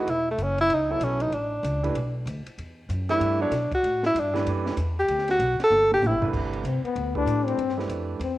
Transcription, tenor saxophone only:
0.00 F#4
0.09 E4
0.31 A3
0.43 C#4
0.61 E4
0.74 D#4
0.92 E4
1.04 C#4
1.22 D#4
1.34 D4
3.10 E4
3.42 D4
3.74 F#4
4.06 E4
4.20 D4
4.99 G4
5.31 F#4
5.64 A4
5.94 G4
6.06 E4

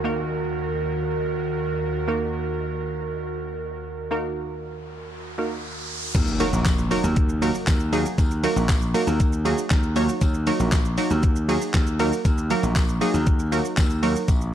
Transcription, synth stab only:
0.04 A#3 D#4 F#4 A#4
2.08 A#3 D#4 F#4 A#4
4.11 A#3 D#4 F#4 A#4
5.38 A#3 D#4 F#4 A#4
6.40 F#3 A#3 D#4 F#4 A#4
6.91 F#3 A#3 D#4 F#4 A#4
7.42 F#3 A#3 D#4 F#4 A#4
7.93 F#3 A#3 D#4 F#4 G#4
8.43 F#3 A#3 D#4 F#4 A#4
8.94 F#3 A#3 D#4 F#4 A#4
9.45 F#3 A#3 D#4 F#4 G#4
9.96 F#3 A#3 D#4 F#4 C#5
10.47 F#3 A#3 D#4 F#4 A#4
10.98 F#3 A#3 D#4 F#4 A#4
11.48 F#3 A#3 D#4 F#4 G#4
11.99 F#3 A#3 D#4 F#4 A#4
12.50 F#3 A#3 D#4 F#4 A#4
13.01 F#3 A#3 D#4 F#4 G#4
13.52 F#3 A#3 D#4 F#4 A#4
14.03 F#3 A#3 D#4 F#4 A#4

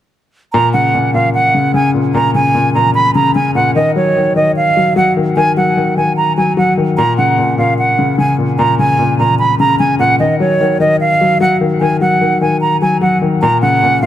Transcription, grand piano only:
0.54 A#2
0.74 C#3
0.94 A#2
1.14 A#2
1.54 C#3
1.74 C#3
1.94 A#2
2.14 A#2
2.35 C#3
2.55 A#2
2.75 A#2
3.15 C#3
3.36 C#3
3.55 A#2
3.76 D#3
3.96 F#3
4.16 D#3
4.36 D#3
4.77 F#3
4.96 F#3
5.17 D#3
5.37 D#3
5.57 F#3
5.77 D#3
5.97 D#3
6.38 F#3
6.57 F#3
6.77 D#3
6.98 A#2
7.18 C#3
7.38 A#2
7.58 A#2
7.99 C#3
8.18 C#3
8.38 A#2
8.59 A#2
8.79 C#3
8.99 A#2
9.20 A#2
9.60 C#3
9.80 C#3
9.99 A#2
10.20 D#3
10.40 F#3
10.61 D#3
10.80 D#3
11.21 F#3
11.40 F#3
11.61 D#3
11.81 D#3
12.01 F#3
12.21 D#3
12.41 D#3
12.82 F#3
13.02 F#3
13.22 D#3
13.43 A#2
13.63 C#3
13.83 A#2
14.03 A#2

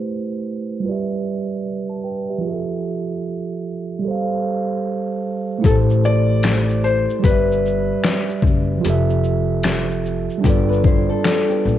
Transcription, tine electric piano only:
Already playing: A3 E4 G4 B4 C5
0.80 G3 F4
0.86 G4 B4 D5
0.92 E5
1.89 A5
2.04 B4 G5
2.30 G4 E5
2.38 F3 F4
2.44 G4 G#4
2.50 A4 E5
3.99 G3 G4
4.05 A4 C5
4.11 F5
5.58 A3 E4
5.64 G4 A4
5.70 C5
7.19 G3 G4
7.26 B4 D5
7.31 E5
8.78 F3 F4
8.84 G4 A4
8.90 E5
10.38 G3 D4
10.44 F4 A4
10.50 D5

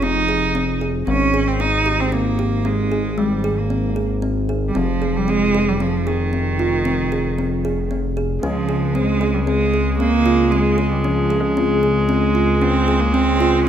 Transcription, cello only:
0.03 D#4
1.08 C#4
1.48 C4
1.61 D#4
2.00 C4
2.13 A#3
2.65 G#3
3.18 G3
3.58 A#3
4.68 G3
4.77 F3
5.17 G3
5.30 G#3
5.68 G3
5.82 F3
6.08 D#3
8.43 F3
8.95 G#3
9.34 G3
9.47 G#3
9.99 A#3
10.51 G#3
10.92 G3
11.04 F3
12.10 G#3
12.62 C4
13.00 A#3
13.13 C4
13.66 C#4

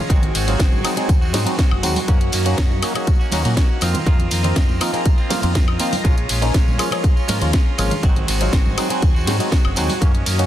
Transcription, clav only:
0.10 F#3 G#3 C4 D#4 F#4
0.48 F#3 G#3 C4 D#4 F4
0.84 F#3 G#3 C4 D#4 F#4
0.97 F#3 G#3 C4 D#4 G#4
1.33 F#3 G#3 C4 D#4 F#4
1.46 F#3 G#3 C4 D#4 F#4
1.83 F#3 G#3 C4 D#4 F#4
2.08 F#3 A#3 C#4 D#4 F#4
2.46 F#3 A#3 C#4 D#4 F#4
2.83 F#3 A#3 C#4 D#4 F#4
2.96 F#3 A#3 C#4 D#4 G#4
3.32 F#3 A#3 C#4 D#4 F#4
3.45 F#3 A#3 C#4 D#4 F#4
3.82 F3 A#3 C4 D#4 F4
4.07 F3 A#3 C4 D#4 F4
4.44 F3 A#3 C4 D#4 F4
4.81 F3 A#3 C4 D#4 F4
4.93 F3 A#3 C4 D#4 G#4
5.30 F3 A#3 C4 D#4 F4
5.42 F3 A#3 C4 D#4 F4
5.80 F3 A#3 C4 D#4 F4
6.04 F3 G#3 A#3 C#4 F4
6.42 F3 G#3 A#3 C#4 D#4
6.78 F3 G#3 A#3 C#4 F4
6.92 F3 G#3 A#3 C#4 G#4
7.29 F3 G#3 A#3 C#4 F4
7.41 F3 G#3 A#3 C#4 F4
7.78 F3 G#3 A#3 C#4 F4
8.03 F#3 G#3 C4 D#4 F#4
8.41 F#3 G#3 C4 D#4 F4
8.77 F#3 G#3 C4 D#4 F#4
8.90 F#3 G#3 C4 D#4 G#4
9.27 F#3 G#3 C4 D#4 F#4
9.40 F#3 G#3 C4 D#4 F#4
9.77 F#3 G#3 C4 D#4 F#4
10.01 F#3 A#3 C#4 D#4 F#4
10.39 F#3 A#3 C#4 D#4 F#4

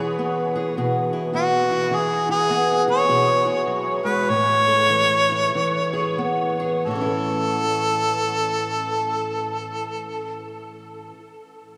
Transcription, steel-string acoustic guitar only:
Already playing: E3 B3 E4 G#4
0.19 B3
0.56 G#4
0.77 B2 G#4
1.13 E4
1.34 B3 E4
1.71 E4
1.91 E3
2.29 E4
2.50 B3
2.88 G#4
3.09 B2 G#4
3.46 E4
3.67 F#3
4.05 G#3
4.29 A2
4.68 A4
4.90 E3
5.31 E4
5.55 E3
5.93 G#4
6.18 B3
6.60 G#4
6.86 A2
6.91 E3
6.95 C#4
7.01 E4
7.06 A4

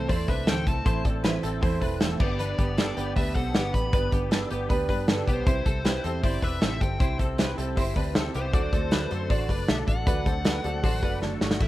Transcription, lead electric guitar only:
0.09 D5
0.28 E5
0.48 G5
0.67 A5
2.20 D5
3.17 E5
3.35 F#5
3.75 B5
5.28 C5
6.24 D5
6.43 E5
6.81 G5
8.36 C5
9.31 D5
9.69 E5
9.88 F#5
11.62 E5

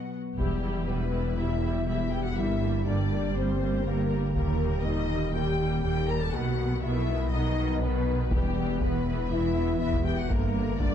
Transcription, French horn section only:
0.37 G3
0.87 B3
1.36 E4
1.88 E4
2.11 G4
2.24 F#4
2.36 E4
2.85 D4
3.34 C4
3.84 A#3
4.33 A#3
4.84 D#4
5.35 G4
5.84 G4
6.08 A#4
6.22 A4
6.33 F#4
6.83 E4
7.33 D#4
7.83 B3
8.32 G3
8.83 B3
9.31 E4
9.80 E4
10.05 G4
10.18 F#4
10.30 A#3
10.79 D4

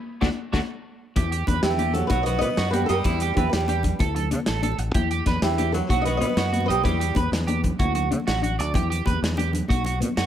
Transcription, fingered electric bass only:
0.22 D2
0.54 D2
1.17 E2
1.48 E2
1.63 E2
2.11 B1
2.42 B2
2.58 F#2
2.90 F#2
3.05 E2
3.37 E2
3.53 E2
4.00 D2
4.32 D3
4.48 A1
4.78 A1
4.95 E2
5.26 E2
5.42 E2
5.90 B1
6.21 B2
6.37 F#2
6.69 B1
6.85 E2
7.16 E2
7.32 E2
7.80 D2
8.11 D3
8.28 A1
8.60 D2
8.75 E2
9.07 E2
9.22 E2
9.70 B1
10.01 B2
10.17 F#2

